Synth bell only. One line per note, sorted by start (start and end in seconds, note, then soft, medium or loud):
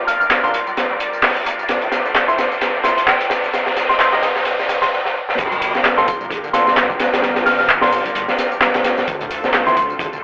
0.07 0.16 F6 medium
0.20 0.27 F6 medium
0.44 0.77 C6 medium
2.28 2.35 C6 medium
2.38 2.46 C6 medium
2.84 2.93 C6 medium
2.97 3.04 C6 medium
3.07 3.26 G5 loud
3.89 3.96 C6 medium
3.99 4.08 C6 medium
4.82 4.88 C6 medium
5.97 6.04 C6 medium
6.08 6.16 C6 medium
6.53 6.62 C6 medium
6.67 6.73 C6 medium
7.46 7.54 F6 medium
7.59 7.65 F6 medium
7.82 8.15 C6 medium
9.67 9.73 C6 medium
9.77 9.85 C6 medium